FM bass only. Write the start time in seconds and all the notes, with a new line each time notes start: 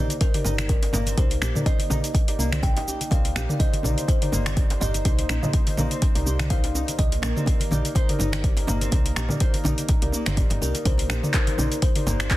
0.45 G1
0.93 G1
1.18 C2
1.42 A#1
1.90 A#1
2.39 C2
2.76 G1
3.11 C2
3.35 A#1
3.84 A#1
4.33 G1
4.81 G1
5.05 C2
5.29 A#1
5.78 A#1
6.15 C2
6.26 C2
6.99 C2
7.23 A#1
7.71 A#1
8.20 G1
8.68 G1
8.92 C2
9.16 A#1
9.65 A#1
10.02 C2
10.26 G1
10.50 G1
10.61 C2
10.86 C2
11.10 A#1
11.58 A#1
12.07 G1